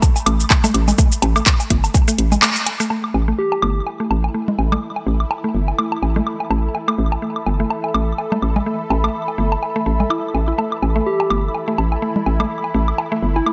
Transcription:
Already playing: A3 B5
0.02 kick, high woodblock, shaker
0.16 low woodblock, shaker
0.26 A1 A3, closed hi-hat, high woodblock
0.40 shaker
0.50 kick, clap, low woodblock, shaker
0.64 A3, low conga, high woodblock, shaker
0.74 A1, closed hi-hat, high woodblock
0.88 low conga, low woodblock, shaker
0.98 A3, kick, shaker
1.12 shaker
1.22 A1, closed hi-hat, high woodblock, low woodblock
1.36 A3, high woodblock, shaker
1.46 kick, clap, shaker
1.60 low woodblock, shaker
1.70 G1 A3, kick, closed hi-hat
1.84 high woodblock, shaker
1.94 kick, low woodblock, shaker
2.08 A3, shaker
2.18 A1, closed hi-hat
2.32 low conga, low woodblock, shaker
2.42 A3, clap, high woodblock, shaker
2.56 closed hi-hat, shaker
2.66 closed hi-hat, low woodblock
2.80 A3, shaker
2.90 E3 A3 E4 A4, high woodblock
3.04 high woodblock
3.14 A1, low woodblock
3.28 A3
3.38 G4
3.52 high woodblock, low woodblock
3.57 B5
3.62 G1 A3 E5, high woodblock
3.87 low woodblock
4.00 A3
4.11 A1, high woodblock
4.24 low woodblock
4.34 A3
4.48 low conga
4.59 A1, low woodblock
4.72 A3, low conga, high woodblock
4.96 low woodblock
5.07 A1 A3
5.20 high woodblock
5.31 high woodblock, low woodblock
5.44 A3
5.55 G1
5.68 low woodblock
5.79 A3, high woodblock
5.92 high woodblock
6.02 A1, low woodblock
6.16 A3, low conga
6.27 high woodblock
6.40 low woodblock
6.50 A1 A3, high woodblock
6.74 A4, low woodblock
6.88 A3, high woodblock
6.98 A1
7.12 high woodblock, low woodblock
7.22 A3
7.36 high woodblock
7.46 G1, low woodblock
7.60 A3
7.70 high woodblock
7.84 low woodblock
7.94 A1 A3, high woodblock
8.18 low woodblock
8.32 A3, low conga, high woodblock
8.42 A1, high woodblock
8.56 low conga, low woodblock
8.66 A3
8.90 A1, high woodblock, low woodblock
9.04 A3, high woodblock
9.28 low woodblock
9.38 G1 A3
9.52 high woodblock
9.63 low woodblock
9.76 A3
9.86 A1 A3
10.00 low conga, low woodblock
10.10 E4, high woodblock
10.35 A1, low woodblock
10.48 E4
10.58 A3 E4, high woodblock
10.72 high woodblock
10.82 A1, low woodblock
10.96 A3
11.06 G4
11.20 high woodblock, low woodblock
11.30 G1 A3, high woodblock
11.55 low woodblock
11.68 A3
11.78 A1, high woodblock
11.92 low woodblock
12.02 A3
12.16 low conga
12.26 A1, low woodblock
12.40 A3, low conga, high woodblock
12.64 low woodblock
12.74 A1 A3
12.88 high woodblock
12.98 high woodblock, low woodblock
13.12 A3
13.23 G1
13.36 E4, low woodblock
13.46 A3, high woodblock

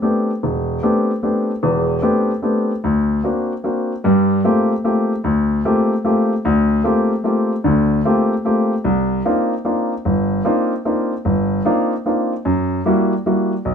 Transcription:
0.02 A3 B3 C4 D4 G4
0.43 E1
0.83 A3 B3 C4 D4 G4
1.23 A3 B3 C4 D4 G4
1.63 E1 E2
2.02 A3 B3 C4 D4 G4
2.42 A3 B3 C4 D4 G4
2.84 D2
3.24 A#3 C4 D4 F#4
3.64 A#3 C4 D4 F#4
4.04 G2 G3
4.44 A3 A#3 C4 F4 G4
4.84 A3 A#3 C4 F4 G4
5.24 D2
5.65 A3 A#3 C4 F4 G4
6.04 A3 A#3 C4 F4 G4
6.45 D2
6.84 A3 A#3 C4 F4 G4
7.24 A3 A#3 C4 F4 G4
7.64 D2 D3
8.05 A3 A#3 C4 F4 G4
8.45 A3 A#3 C4 F4 G4
8.84 C2
9.25 A#3 C4 D4 D#4 F4
9.65 A#3 C4 D4 D#4 F4
10.05 G1
10.45 A#3 C4 D4 D#4 F4
10.85 A#3 C4 D4 D#4 F4
11.25 G1
11.65 A#3 C4 D4 D#4 F4
12.06 A#3 C4 D4 D#4 F4
12.45 F#2
12.86 G3 A#3 E4 F#4
13.26 G3 A#3 E4 F#4
13.65 B1

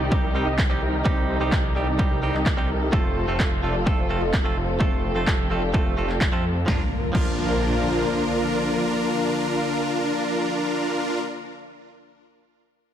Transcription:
Already playing: C2 C3 D#3 G3 D#4 G4 D5
0.11 G3 C4 D#4 G4, kick
0.23 C2 D#4 G4 A#4
0.35 G3 C4 D#4 G4
0.47 C2 D#4 G4 D#5
0.59 kick, clap
0.70 G3 C4 D#4 G4
0.82 C2 D#4 G4 A#4
1.05 C2 G3 C4 D#4 G4 A4 C5, kick
1.40 C2 G3 C4 D#4 G4 C5
1.52 kick, clap
1.75 C2 G3 C4 D#4 G4 D5
1.99 G3 C4 D#4 G4, kick
2.11 C2 D#4 G4 A#4
2.22 G3 C4 D#4 G4
2.34 C2 D#4 G4 D#5, clap
2.46 kick, clap
2.57 G3 C4 D#4 G4
2.69 C2 D#4 G4 A#4
2.92 F1 F3 A3 C4 F4 A4 C5, kick
3.27 F1 A3 C4 F4 A4 C5
3.40 kick, clap
3.62 F1 A3 C4 F4 A4 D5
3.86 A3 C4 F4 A4, kick
3.98 F1 F4 A4 C5
4.09 A3 C4 F4 A4
4.22 F1 F4 A4 D#5
4.34 kick, clap
4.44 A3 C4 F4 A4
4.57 F1 F4 A4 C5
4.80 F1 A3 C4 F4 G4 A4 C5, kick
5.15 F1 A3 C4 F4 A4 C5
5.27 kick, clap
5.50 F1 A3 C4 F4 A4 D5
5.74 A3 C4 F4 A4, kick
5.86 F1 F4 A4 C5
5.97 F1 A3 C4 F4 A4 D5
6.09 clap
6.21 kick, clap
6.32 F2 A3 C4 F4 A4 C5
6.66 A#1 D3 F3 A#3 D4 F4 A#4, kick, snare, impact
7.13 A#1 F3 A#3 D4 F4 A#4, kick, crash

